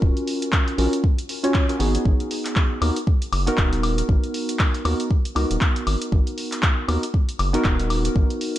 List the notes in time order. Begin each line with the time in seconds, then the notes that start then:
Already playing: C#4 F4 F#4 A#4
0.02 D#1, kick
0.17 closed hi-hat
0.27 open hi-hat
0.42 closed hi-hat
0.52 kick, clap
0.68 closed hi-hat
0.78 A#1 C#4 F4 F#4 A#4, open hi-hat
0.93 closed hi-hat
1.04 kick
1.18 closed hi-hat
1.29 open hi-hat
1.43 C#4 F4 F#4 C#5, closed hi-hat
1.54 kick, clap
1.69 C#4 F4 F#4 A#4, closed hi-hat
1.79 G#1 B3 D#4 F#4 G#4, open hi-hat
1.95 closed hi-hat
2.05 G#1, kick
2.20 closed hi-hat
2.31 open hi-hat
2.45 clap, closed hi-hat
2.56 kick, clap
2.81 D#2 B3 D#4 F#4 A#4, open hi-hat, high woodblock
2.96 closed hi-hat
3.07 kick
3.22 closed hi-hat
3.33 F#1, open hi-hat, high woodblock
3.46 B3 D#4 F#4 A#4, closed hi-hat
3.57 D#1, kick, clap
3.73 closed hi-hat
3.83 open hi-hat, high woodblock
3.98 closed hi-hat
4.09 G#1, kick
4.24 closed hi-hat
4.34 open hi-hat
4.49 closed hi-hat
4.59 kick, clap
4.74 closed hi-hat
4.85 D#2 B3 D#4 F#4 A#4, open hi-hat, high woodblock
5.00 closed hi-hat
5.11 kick
5.25 closed hi-hat
5.35 C#2 B3 D#4 F#4 A#4, open hi-hat, high woodblock
5.51 D#1, closed hi-hat
5.61 kick, clap
5.76 closed hi-hat
5.87 G#1, open hi-hat, high woodblock
6.02 closed hi-hat
6.12 G#1, kick
6.27 closed hi-hat
6.38 open hi-hat
6.52 clap, closed hi-hat
6.63 kick, clap
6.88 D#2 B3 D#4 F#4 A#4, open hi-hat, high woodblock
7.03 closed hi-hat
7.14 kick
7.29 closed hi-hat
7.39 F#1, open hi-hat, high woodblock
7.53 B3 D#4 F#4 A#4, closed hi-hat
7.64 D#1, kick, clap
7.80 closed hi-hat
7.90 open hi-hat, high woodblock
8.05 closed hi-hat
8.16 G#1, kick
8.30 closed hi-hat
8.41 open hi-hat